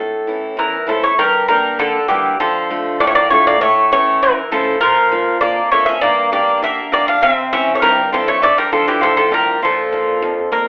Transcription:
Already playing: A2 A4
0.27 E3 C#4 E4
0.57 E2 E3 A#4
0.87 F3 A3 C#4 E4 A4
1.03 A3 C#5
1.19 G2 G3 A#4
1.48 G3 A#3 D4 A#4
1.79 D3 A4
2.08 E3 G3 A#3 D4 G4
2.40 D3 F3 A4
2.70 A3 D4 F4
3.00 A2 A3 D5
3.07 A3 C#5
3.15 A#3 D5
3.30 A3 D4 F4 C#5
3.47 A#3 D5
3.61 A2 A3 C#5
3.92 E3 A3 C#4 E4 C#5
4.23 E3 A#4
4.52 F3 A3 C#4 E4 A4
4.81 A#2 F3 A#4
5.12 A#3 D4 F4
5.41 F2 A#3 D5
5.71 A3 A#3 D4 F4 C#5
5.86 C#4 E5
6.01 G2 A#3 D5
6.32 A#3 D4 G4 D5
6.62 D3 A#3 E5
6.92 A#3 D4 G4 D5
7.08 D4 F5
7.22 C3 C4 E5
7.53 C4 C#4 E4 G4 E5
7.74 A3 C#5
7.82 G2 G3 A#4
8.12 F3 C4 E4 G4 A4
8.27 A3 C#5
8.42 D3 A3 D5
8.58 G3 A#4
8.72 F3 D4 F4 A4
8.87 E3 G4
9.01 A2 F3 A4
9.16 F3 A4
9.31 G3 D4 F4 A#4
9.62 A#2 F3 A4
9.92 A#3 D4 F4
10.22 F2
10.52 A#3 D4 F4 A#4

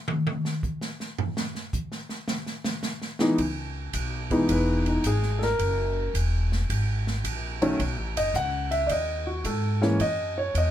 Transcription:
0.08 high tom
0.27 high tom
0.45 snare
0.63 kick, hi-hat pedal
0.81 snare
1.00 snare
1.18 floor tom
1.37 snare
1.55 snare
1.73 kick, hi-hat pedal
1.92 snare
2.09 snare
2.28 snare
2.46 snare
2.64 snare
2.83 snare, hi-hat pedal
3.02 snare
3.19 E3 G#3 B3 D#4, snare
3.38 C#2, kick, ride
3.93 B1, kick, hi-hat pedal, ride
4.31 E3 G#3 B3 D#4, kick, ride
4.49 E1 B4, kick, ride
4.86 D#4, ride
5.04 G#1 G#4, kick, hi-hat pedal, ride
5.22 snare
5.39 A4, snare
5.43 A#4
5.59 F#1, kick, ride
6.14 E1, kick, hi-hat pedal, ride
6.52 snare
6.70 G#1, kick, ride
7.07 snare
7.24 A#1, kick, hi-hat pedal, ride
7.62 D#3 F#3 A3 C#4, ride
7.79 B1, kick, ride
7.97 A1
8.15 F#1 D#5, ride
8.34 C#2 F#5, kick, hi-hat pedal
8.71 E5, ride
8.87 D#2 D5, kick, ride
8.92 D#5
9.27 F#4
9.44 G#2 A4, kick, hi-hat pedal, ride
9.81 E3 G#3 A#3 C#4 C#5, snare
9.99 F#2 D#5, kick, ride
10.38 C#5
10.54 E2 D#5, kick, hi-hat pedal, ride

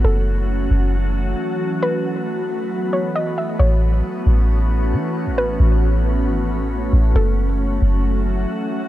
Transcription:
0.04 F#1 E3 F#3 A3 C#4 F#4 A4
0.71 F#1
1.82 F#3 B3 B4
2.93 C#5
3.16 D#5
3.38 E5
3.59 A1 E3 A3 B3 C#4 F#4 C#5
4.27 A1
4.93 E3
5.27 A1
5.38 B4
5.60 A1
6.27 G#1
6.60 A1
6.93 A1
7.15 F#1 E3 F#3 F#4 A4
7.82 F#1

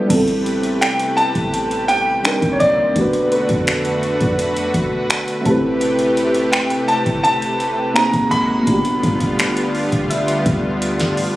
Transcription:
Already playing: G3 B3 D4 F4 B4
0.06 C3 G3 A3 B3 G4 B4, kick, closed hi-hat
0.10 A1 C4 E4 A4, crash
0.15 A4
0.28 closed hi-hat
0.46 closed hi-hat
0.63 closed hi-hat
0.81 G5, finger snap, closed hi-hat
0.99 closed hi-hat
1.17 A5, closed hi-hat
1.35 A1, kick, closed hi-hat
1.54 closed hi-hat
1.71 closed hi-hat
1.88 G5, closed hi-hat
2.22 D#3 G3 A#3 C4 D4 D#4, finger snap, closed hi-hat
2.27 A#4
2.42 C2, kick, closed hi-hat
2.52 C#5
2.60 C2 D5, closed hi-hat
2.92 A3 B3 F#4 B4
2.96 B1 D3 D4 F#4, kick, closed hi-hat
3.01 B4
3.13 closed hi-hat
3.32 B4, closed hi-hat
3.49 F2, kick, closed hi-hat
3.67 finger snap, closed hi-hat
3.85 closed hi-hat
4.03 closed hi-hat
4.21 F2, kick, closed hi-hat
4.39 closed hi-hat
4.57 closed hi-hat
4.74 B1, kick, closed hi-hat
5.10 finger snap, closed hi-hat
5.28 closed hi-hat
5.41 A3 C4
5.46 A1 C3 A3 E4 G4 A4, kick, closed hi-hat
5.50 B4
5.81 closed hi-hat
5.99 closed hi-hat
6.17 closed hi-hat
6.34 closed hi-hat
6.52 G5, finger snap, closed hi-hat
6.70 closed hi-hat
6.88 A5, closed hi-hat
7.06 G1, kick, closed hi-hat
7.24 A5, closed hi-hat
7.42 closed hi-hat
7.60 closed hi-hat
7.94 G#3 A#3 C4 D#4 F#4 A#5, finger snap, closed hi-hat
7.98 G#4
8.13 G#1, kick, closed hi-hat
8.31 G#1 B5, closed hi-hat
8.63 A3 B3
8.67 G1 D3 G3 B3 D4 F4, kick, closed hi-hat
8.72 G4
8.85 closed hi-hat
9.03 G2, kick, closed hi-hat
9.20 G1, kick, closed hi-hat
9.39 finger snap, closed hi-hat
9.57 closed hi-hat
9.75 open hi-hat
9.92 G1, kick, closed hi-hat
10.10 E5, closed hi-hat
10.28 closed hi-hat
10.46 D2, kick, closed hi-hat
10.82 closed hi-hat
11.00 G2, snare, closed hi-hat
11.17 open hi-hat

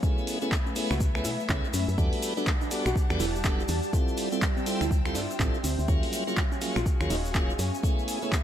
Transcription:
Already playing: B3 C#4 F#4 B4 E5 G#5 B5
0.03 A3 B3 C#4 E4 G#4, kick, shaker
0.18 A3, shaker
0.27 open hi-hat, shaker
0.33 E5
0.42 A3 B3 C#4 E4 G#4, shaker
0.52 kick, clap, shaker
0.66 C#4, shaker
0.76 A3 B3 C#4 E4 G#4, open hi-hat, shaker
0.91 C#2 F#4, finger snap, shaker
1.00 kick, shaker
1.15 A3 B3 C#4 E4 G#4, finger snap, shaker
1.25 B2 E4, open hi-hat, shaker
1.40 shaker
1.49 C#2 A3 B3 C#4 E4 G#4, kick, clap, shaker
1.64 shaker
1.73 F#2 C#4, open hi-hat, shaker
1.88 F#2, shaker
1.98 E2 G3 B3 D4 F#4 A4 D5 F#5 A5, kick, shaker
2.13 open hi-hat, shaker
2.20 G4, open hi-hat, shaker
2.37 G3 B3 D4 F#4 A4, shaker
2.46 kick, clap, shaker
2.51 F#5
2.61 D4, shaker
2.71 G3 B3 D4 F#4 A4, open hi-hat, shaker
2.86 B1 F#4 A5, finger snap, shaker
2.96 kick, shaker
3.10 E2 G3 B3 D4 F#4 A4, finger snap, shaker
3.20 E1 E4, open hi-hat, shaker
3.36 shaker
3.44 G3 B3 D4 F#4 A4, kick, clap, shaker
3.60 shaker
3.68 E2 D4, open hi-hat, shaker
3.83 shaker
3.93 G3 C4 E4 F4 A4 E5 G5 C6, kick, shaker
4.08 shaker
4.17 G5, open hi-hat, shaker
4.32 G3 C4 E4 F4 A4, shaker
4.37 F4 E6
4.42 kick, clap, shaker
4.57 C4, shaker
4.66 G3 C4 E4 F4 A4, open hi-hat, shaker
4.81 D2 E4, finger snap, shaker
4.91 kick, shaker
5.05 G3 C4 E4 F4 A4, finger snap, shaker
5.15 G2 D4, open hi-hat, shaker
5.31 shaker
5.39 A1 G3 C4 E4 F4 A4, kick, clap, shaker
5.54 shaker
5.64 D2 C4, open hi-hat, shaker
5.79 D2, shaker
5.88 D#2 F#3 A#3 C#4 F4 G#4 F5 G#5 C#6, kick, shaker
6.03 open hi-hat, shaker
6.13 open hi-hat, shaker
6.27 F#3 A#3 C#4 F4 F#4 G#4, shaker
6.37 kick, clap, shaker
6.52 C#4, shaker
6.61 F#3 A#3 C#4 F4 G#4, open hi-hat, shaker
6.66 G#5
6.76 A#1 F4, finger snap, shaker
6.86 kick, shaker
7.00 D#2 F#3 A#3 C#4 F4 G#4, finger snap, shaker
7.10 D#1 D#4, open hi-hat, shaker
7.25 shaker
7.34 F#3 A#3 C#4 F4 G#4, kick, clap, shaker
7.50 shaker
7.59 F#2 A3 B3 C#4 E5 G#5 B5, open hi-hat, shaker
7.74 shaker
7.83 A3 B3 C#4 E4 G#4, kick, shaker
7.92 A4
7.98 E5, shaker
8.08 open hi-hat, shaker
8.22 A3 B3 C#4 E4 G#4, shaker
8.32 kick, clap, shaker

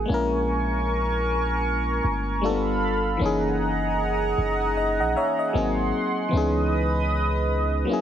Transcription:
0.05 G#3 A#3 A#4 G#5 C#6
0.10 A#1 C#4 E4
0.14 A#4
2.04 G1
2.41 G3 A3 D4 F4 A4 F5 B5
2.46 B3 A4
3.17 E3 A#3 G#4 D#5 F#5 A#5
3.21 F#1 C#4 D#4
3.26 G#4
4.38 F#1
4.77 D#5
5.00 A#1 D#5 F#5
5.17 C#5 E5
5.39 D#5
5.53 G#1 F#3 A#3 C4 D#4 F#5 C6
5.57 G#4
6.29 C#2 E3 B3 B4 D#5 D#6
6.33 C#4 D#4
6.37 G#4
7.85 F#3 A#3 A#4 F#5 E6
7.89 C#4 E4
7.93 G#4

